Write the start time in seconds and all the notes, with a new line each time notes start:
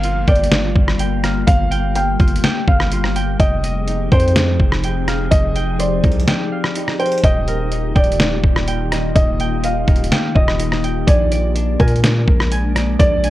Already playing: G1 G3 A#3 F4 F5 G5
0.04 F4, closed hi-hat
0.27 G1 D5 G5, kick, closed hi-hat
0.36 closed hi-hat
0.44 closed hi-hat
0.52 snare, closed hi-hat
0.76 G1, kick
0.88 cross-stick
0.99 G5, closed hi-hat
1.24 F5, cross-stick, closed hi-hat
1.47 G1 G4 F5, kick, closed hi-hat
1.71 G5, closed hi-hat
1.95 F5 G5, closed hi-hat
2.20 G1 F4, kick, closed hi-hat
2.28 closed hi-hat
2.36 closed hi-hat
2.44 G5, snare, closed hi-hat
2.68 G1 F5, kick
2.80 cross-stick
2.92 F4, closed hi-hat
3.04 cross-stick
3.16 G5, closed hi-hat
3.40 F1 F3 C4 D#4 G#4 D#5 G5, kick, closed hi-hat
3.64 D#5, closed hi-hat
3.87 D#4, closed hi-hat
4.12 F2 C5 G5, kick, closed hi-hat
4.20 closed hi-hat
4.28 closed hi-hat
4.36 snare, closed hi-hat
4.60 F1, kick
4.72 cross-stick
4.84 G5, closed hi-hat
5.08 F5, cross-stick, closed hi-hat
5.31 F1 D#5, kick, closed hi-hat
5.56 G5, closed hi-hat
5.79 C5 D5, closed hi-hat
6.03 C2 D#4, kick, closed hi-hat
6.12 closed hi-hat
6.20 closed hi-hat
6.28 G5, snare, closed hi-hat
6.52 F5
6.64 cross-stick
6.75 D#4, closed hi-hat
6.88 cross-stick
6.99 C5 G5, closed hi-hat
7.06 closed hi-hat
7.12 closed hi-hat
7.18 closed hi-hat
7.23 D#1 D#3 A#3 D#4 F4 D#5 G5, kick, closed hi-hat
7.48 A#4, closed hi-hat
7.72 D#4, closed hi-hat
7.95 D#1 D5 G5, kick, closed hi-hat
8.04 closed hi-hat
8.12 closed hi-hat
8.20 snare, closed hi-hat
8.44 D#1, kick
8.56 cross-stick
8.68 G5, closed hi-hat
8.91 D#5, cross-stick, closed hi-hat
9.16 D#1 D#5, kick, closed hi-hat
9.40 G5, closed hi-hat
9.64 D#5 F5, closed hi-hat
9.88 D#1 D#4, kick, closed hi-hat
9.96 closed hi-hat
10.04 closed hi-hat
10.11 G5, snare, closed hi-hat
10.35 D#1 D#5, kick
10.48 cross-stick
10.60 D#4, closed hi-hat
10.72 cross-stick
10.84 G5, closed hi-hat
11.07 A#1 G#3 D4 D5 G#5, kick, closed hi-hat
11.32 D5, closed hi-hat
11.55 D4, closed hi-hat
11.79 A#2 A#4 G#5, kick, closed hi-hat
11.88 closed hi-hat
11.96 closed hi-hat
12.04 snare, closed hi-hat
12.28 A#1, kick
12.40 cross-stick
12.52 G#5, closed hi-hat
12.75 D5, cross-stick, closed hi-hat
12.99 A#1 D5, kick, closed hi-hat
13.24 G#5, closed hi-hat